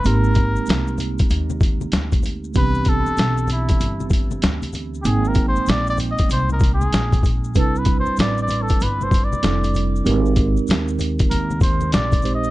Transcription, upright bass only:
0.05 0.54 G#1 loud
0.57 muted upright bass stroke soft
0.68 1.17 C2 medium
1.20 muted upright bass stroke soft
1.30 1.90 D#2 medium
1.93 2.52 D2 medium
2.56 3.04 C2 loud
3.06 muted upright bass stroke soft
3.17 3.66 B1 medium
3.70 muted upright bass stroke soft
3.80 4.40 G1 medium
4.43 5.02 D2 medium
5.05 5.54 G#1 loud
5.57 muted upright bass stroke soft
5.68 6.17 A#1 medium
6.20 muted upright bass stroke soft
6.29 6.89 C2 loud
6.92 7.56 A#1 medium
7.56 8.05 C2 loud
8.06 muted upright bass stroke soft
8.18 8.67 A1 medium
8.71 muted upright bass stroke soft
8.81 9.30 G1 medium
9.33 muted upright bass stroke soft
9.44 10.03 F1 medium
10.06 10.55 G#1 loud
10.58 muted upright bass stroke soft
10.69 11.28 D#2 medium
11.31 11.90 D#2 loud
11.93 12.51 A#1 medium

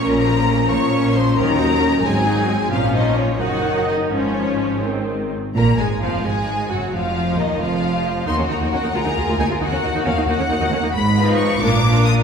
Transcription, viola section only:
0.03 0.24 A#3 medium
0.03 0.25 C#4 medium
0.27 0.49 F3 soft
0.27 0.48 A#3 soft
0.48 0.69 A#3 medium
0.48 0.71 C#4 soft
0.70 0.93 F3 soft
0.70 0.91 A#3 medium
0.92 1.13 A#3 medium
0.92 1.13 C#4 medium
1.14 1.37 F3 medium
1.14 1.37 A#3 soft
1.37 1.58 D#3 medium
1.37 1.58 C#4 medium
1.59 1.82 F#3 soft
1.59 1.82 D#4 medium
1.81 2.04 D#3 medium
1.81 2.04 C#4 medium
2.04 2.25 G#3 soft
2.04 2.25 C4 soft
2.26 2.49 F#3 medium
2.26 2.49 D#4 medium
2.49 2.72 G#3 soft
2.49 2.72 C4 soft
2.71 3.37 F3 medium
2.71 3.37 C#4 medium
3.40 4.12 D#3 medium
3.40 4.10 D#4 medium
4.12 4.84 F3 soft
4.12 4.85 C#4 medium
4.85 5.36 D#3 soft
4.85 5.35 C4 soft
5.56 5.77 A#3 medium
5.79 6.02 G#3 medium
6.02 6.25 F3 medium
6.25 6.70 G#3 medium
6.71 6.94 F#3 medium
6.93 7.39 F3 medium
7.39 7.61 D#3 medium
7.60 8.27 F3 medium
8.27 8.32 A#3 medium
8.27 8.31 D#4 medium
8.39 8.43 A#3 soft
8.39 8.43 C#4 soft
8.51 8.55 A#3 soft
8.51 8.55 D#4 soft
8.61 8.66 A#3 medium
8.61 8.66 D#4 medium
8.73 8.77 A#3 medium
8.73 8.77 C#4 soft
8.84 8.88 A#3 soft
8.84 8.88 D#4 medium
8.95 8.99 A#3 medium
8.95 9.00 F4 medium
9.06 9.10 A#3 soft
9.06 9.11 D#4 soft
9.18 9.22 A#3 soft
9.18 9.22 F4 medium
9.29 9.33 A#3 medium
9.29 9.33 F4 medium
9.40 9.44 A#3 soft
9.40 9.45 D#4 medium
9.51 9.55 A#3 medium
9.51 9.55 F4 medium
9.61 9.66 A#3 medium
9.61 9.66 D#4 medium
9.72 9.76 A#3 soft
9.72 9.77 C#4 soft
9.83 9.88 A#3 soft
9.83 9.88 D#4 soft
9.95 9.99 A#3 medium
9.95 9.99 D#4 medium
10.06 10.11 A#3 medium
10.06 10.11 C#4 medium
10.17 10.22 A#3 medium
10.17 10.22 D#4 medium
10.29 10.33 A#3 medium
10.29 10.34 D#4 medium
10.40 10.44 A#3 medium
10.40 10.44 C#4 medium
10.51 10.55 A#3 medium
10.51 10.55 D#4 medium
10.61 10.66 A#3 medium
10.61 10.66 D#4 medium
10.73 10.77 A#3 medium
10.73 10.77 C#4 medium
10.83 10.88 A#3 medium
10.83 10.88 D#4 medium
11.17 11.60 F3 medium
11.17 11.60 D#4 medium
11.61 11.82 A#3 medium
11.61 11.82 D4 medium
11.83 12.23 A#3 medium
11.83 12.23 D4 medium

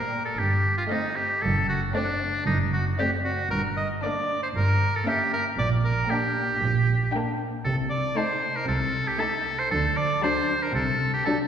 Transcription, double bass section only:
0.38 0.79 G1 medium
1.42 1.83 F#1 medium
2.46 2.88 F#1 medium
3.51 3.92 G1 medium
4.55 4.96 G1 medium
5.59 6.00 A#1 medium
6.63 7.04 A#1 medium
7.66 8.06 C2 medium
8.69 9.10 C2 medium
9.72 10.13 D2 medium
10.75 11.16 C2 medium

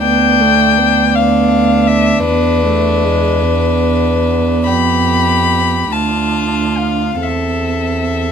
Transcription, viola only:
0.04 0.42 B3 medium
0.40 0.79 A3 medium
0.78 2.26 B3 medium
2.27 2.64 B3 medium
2.65 3.06 A3 soft
3.05 3.44 G#3 soft
3.43 5.92 B3 soft
5.92 7.19 D4 soft
7.21 8.32 C4 soft

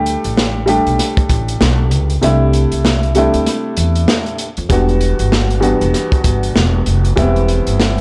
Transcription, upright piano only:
0.00 0.61 G3 medium
0.00 0.61 A3 medium
0.00 0.62 D4 medium
0.00 0.62 G4 loud
0.66 2.11 G3 medium
0.66 2.12 A3 medium
0.66 2.12 D4 medium
0.66 2.13 G4 loud
2.21 3.09 C3 medium
2.21 3.09 G3 medium
2.21 3.09 A3 medium
2.21 3.10 D4 medium
2.21 3.10 E4 loud
3.15 4.44 C3 medium
3.15 4.44 G3 medium
3.15 4.45 A3 medium
3.15 4.45 D4 medium
3.15 4.45 E4 loud
4.69 5.56 E2 medium
4.69 5.57 G3 medium
4.69 5.57 B3 medium
4.69 5.57 D4 medium
4.69 5.58 F#4 loud
5.60 7.06 E2 medium
5.60 7.06 G3 medium
5.60 7.07 B3 medium
5.60 7.07 D4 medium
5.60 7.07 F#4 loud
7.16 8.01 E2 medium
7.16 8.01 G3 medium
7.16 8.01 B3 medium
7.16 8.01 C4 medium
7.16 8.01 E4 loud

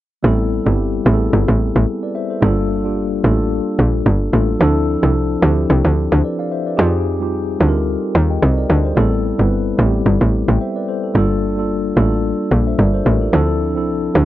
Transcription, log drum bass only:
0.24 0.61 A1 loud
0.66 1.00 G1 medium
1.06 1.29 A1 loud
1.33 1.46 G1 loud
1.48 1.72 A1 medium
1.76 1.86 A1 medium
2.42 3.20 G1 loud
3.24 3.61 A1 loud
3.79 4.02 A#1 medium
4.06 4.29 G1 loud
4.33 4.57 A1 medium
4.61 4.97 D2 loud
5.03 5.37 C2 medium
5.42 5.66 D2 loud
5.70 5.83 C2 loud
5.85 6.08 D2 medium
6.12 6.23 D2 loud
6.79 7.57 F2 loud
7.60 7.97 D2 medium
8.15 8.39 D#2 loud
8.42 8.66 C2 loud
8.70 8.93 D2 loud
8.97 9.33 A1 loud
9.39 9.73 G1 medium
9.79 10.02 A1 loud
10.06 10.19 G1 loud
10.21 10.44 A1 medium
10.48 10.59 A1 medium
11.15 11.93 G1 loud
11.97 12.33 A1 loud
12.51 12.75 A#1 medium
12.79 13.02 G1 loud
13.06 13.29 A1 medium
13.33 13.77 D2 loud
13.76 14.10 C2 medium
14.15 14.25 D2 loud

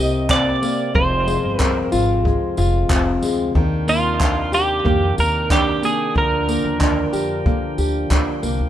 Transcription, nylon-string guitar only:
0.00 0.95 C3 medium
0.00 0.61 A#3 medium
0.00 0.30 C4 medium
0.00 1.01 G4 medium
0.30 1.60 C4 medium
0.62 1.01 A#3 medium
0.94 3.55 F2 medium
1.27 2.24 G#3 medium
1.60 2.90 C4 medium
1.92 2.57 F4 medium
2.25 3.21 G#3 medium
2.58 3.62 F4 medium
2.91 3.62 C4 medium
3.23 3.62 G#3 medium
3.55 6.16 D#3 medium
3.88 4.84 A#3 medium
4.20 5.50 D4 medium
4.52 7.12 G4 medium
4.85 5.82 A#3 medium
5.50 6.80 D4 medium
5.82 6.48 A#3 medium
6.15 8.69 D3 medium
6.49 7.45 A#3 medium
6.81 8.09 D4 medium
7.13 7.78 G4 medium
7.46 8.42 A#3 medium
7.78 8.69 G4 medium
8.11 8.69 D4 medium
8.43 8.69 A#3 medium

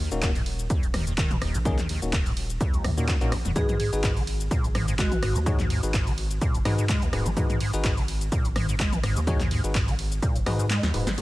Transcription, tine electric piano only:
0.12 0.29 A#3 loud
0.12 0.29 C#4 medium
0.12 0.29 D#4 medium
0.12 0.29 F#4 loud
1.65 1.78 A#3 medium
1.65 1.78 C#4 medium
1.65 1.78 D#4 medium
1.65 1.78 G#4 loud
2.02 2.12 A#3 medium
2.02 2.12 C#4 medium
2.02 2.12 D#4 medium
2.02 2.12 F#4 medium
2.97 3.15 A#3 medium
2.97 3.15 C#4 medium
2.97 3.15 D#4 medium
2.97 3.15 F#4 medium
3.21 3.31 A#3 medium
3.21 3.31 C#4 medium
3.21 3.31 D#4 medium
3.21 3.31 F#4 loud
3.56 3.74 D#4 medium
3.56 3.74 F#4 medium
3.56 3.74 G#4 medium
3.56 3.74 B4 medium
3.93 4.10 D#4 loud
3.93 4.10 F#4 medium
3.93 4.10 G#4 medium
3.93 4.10 B4 loud
5.46 5.58 D#4 loud
5.46 5.58 F#4 medium
5.46 5.58 G#4 medium
5.46 5.58 C#5 loud
5.83 5.93 D#4 medium
5.83 5.93 F#4 medium
5.83 5.93 G#4 medium
5.83 5.93 B4 medium
6.65 6.84 D#4 loud
6.65 6.84 F#4 medium
6.65 6.84 G#4 medium
6.65 6.84 B4 loud
7.13 7.25 D#4 medium
7.13 7.25 F#4 medium
7.13 7.25 G#4 medium
7.13 7.25 B4 medium
7.37 7.55 D#4 medium
7.37 7.55 F#4 medium
7.37 7.55 G#4 medium
7.37 7.55 B4 medium
7.74 7.91 D#4 loud
7.74 7.91 F#4 medium
7.74 7.91 G#4 medium
7.74 7.91 B4 loud
9.27 9.39 D#4 medium
9.27 9.39 F#4 medium
9.27 9.39 G#4 medium
9.27 9.39 C#5 loud
9.64 9.74 D#4 medium
9.64 9.74 F#4 medium
9.64 9.74 G#4 medium
9.64 9.74 B4 medium
10.46 10.65 D#4 loud
10.46 10.65 F#4 medium
10.46 10.65 G#4 medium
10.46 10.65 B4 loud
10.94 11.06 D#4 medium
10.94 11.06 F#4 medium
10.94 11.06 G#4 medium
10.94 11.06 B4 medium
11.18 11.22 A#3 medium
11.18 11.22 C#4 medium
11.18 11.22 D#4 medium
11.18 11.22 F#4 medium

